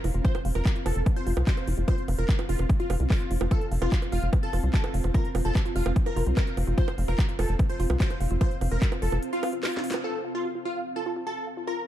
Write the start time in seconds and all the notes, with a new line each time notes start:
Already playing: C4 F4 F5
0.04 F1 E4, open hi-hat, high bongo
0.14 F1 F4, closed hi-hat
0.25 F4 C5, kick, closed hi-hat
0.35 closed hi-hat, high bongo
0.45 F1 F5, open hi-hat
0.55 F1 F4 A#4, closed hi-hat, high bongo
0.65 F#4, kick, clap, closed hi-hat
0.76 F4, closed hi-hat
0.86 F1 F4 A4, open hi-hat, high bongo
0.96 F1, closed hi-hat
1.06 kick, closed hi-hat, high bongo
1.16 F4 C5, closed hi-hat
1.27 F1 F4, open hi-hat
1.37 C2 F4, closed hi-hat, high bongo
1.47 F#4 C5, kick, clap, closed hi-hat
1.57 closed hi-hat, high bongo
1.67 F1 E4, open hi-hat
1.78 F1 F4, closed hi-hat
1.88 F4 C5, kick, closed hi-hat, high bongo
1.98 closed hi-hat
2.08 F1 F5, open hi-hat, high bongo
2.18 F1 F4 A#4, closed hi-hat
2.29 F#4, kick, clap, closed hi-hat
2.39 F4, closed hi-hat, high bongo
2.49 F1 F4, open hi-hat
2.59 F1, closed hi-hat, high bongo
2.69 kick, closed hi-hat
2.80 F4, closed hi-hat
2.90 F1 F#4, open hi-hat, high bongo
3.00 C2 F4, closed hi-hat
3.10 F4 A4, kick, clap, open hi-hat, high bongo
3.21 closed hi-hat
3.31 F1 F4, open hi-hat
3.41 F1 F4, high bongo
3.51 F4 A4, kick, closed hi-hat, high bongo
3.61 closed hi-hat
3.72 F1 F5, open hi-hat
3.82 F1 F4, closed hi-hat, high bongo
3.92 F#4, kick, clap, closed hi-hat
4.02 F4, closed hi-hat, high bongo
4.12 F1 F4, open hi-hat
4.23 F1, closed hi-hat
4.33 kick, closed hi-hat, high bongo
4.43 F4 A4, closed hi-hat
4.53 F1 F4, open hi-hat, high bongo
4.63 C2 F4, closed hi-hat
4.74 F#4 A4, kick, clap, closed hi-hat
4.84 closed hi-hat, high bongo
4.94 F1 F5, open hi-hat
5.04 F1 F4, closed hi-hat, high bongo
5.14 F4 A#4, kick, closed hi-hat
5.25 closed hi-hat
5.35 F1 F5, open hi-hat, high bongo
5.45 F1 F4 A4, closed hi-hat
5.55 F#4, kick, clap, closed hi-hat, high bongo
5.65 F4, closed hi-hat
5.76 F1 F4, open hi-hat
5.86 F1, high bongo
5.96 kick, closed hi-hat
6.06 F4 A#4, closed hi-hat, high bongo
6.16 F1 F4, open hi-hat
6.27 C2 F4, closed hi-hat
6.37 F#4 A#4, kick, clap, closed hi-hat, high bongo
6.47 closed hi-hat
6.57 F1 F5, open hi-hat, high bongo
6.67 F1 F4, closed hi-hat
6.78 F4 C5, kick, closed hi-hat
6.88 closed hi-hat, high bongo
6.98 F1 F5, open hi-hat
7.08 F1 F4 A#4, closed hi-hat, high bongo
7.18 F#4, kick, clap, closed hi-hat
7.29 F4, closed hi-hat
7.39 F1 F4 A4, open hi-hat, high bongo
7.49 F1, closed hi-hat
7.59 kick, closed hi-hat, high bongo
7.69 F4 C5, closed hi-hat
7.80 F1 F4, open hi-hat
7.90 C2 F4, high bongo
8.00 F#4 C5, kick, clap, closed hi-hat
8.10 closed hi-hat, high bongo
8.21 F1 F5, open hi-hat
8.31 F1 F4, closed hi-hat
8.41 F4 C5, kick, closed hi-hat, high bongo
8.51 closed hi-hat
8.61 F1 F5, open hi-hat, high bongo
8.72 F1 F4 A#4, closed hi-hat
8.82 F#4, kick, clap, closed hi-hat
8.92 F4, closed hi-hat, high bongo
9.02 F1 F4 A4, open hi-hat
9.12 F1, closed hi-hat, high bongo
9.23 closed hi-hat
9.33 F4, closed hi-hat
9.43 F4, open hi-hat, high bongo
9.53 F4, closed hi-hat
9.63 F4 F#4, snare, clap, open hi-hat, high bongo
9.74 snare, closed hi-hat
9.84 F5, open hi-hat
9.91 F4, snare, closed hi-hat, high bongo
10.04 C4 F4 A4
10.25 F5
10.35 F4
10.45 F#4 F5
10.55 F4
10.65 F4
10.96 F4 A4
11.06 F4
11.16 F4
11.27 F#4 A4
11.47 F5
11.57 F4
11.67 F4 A#4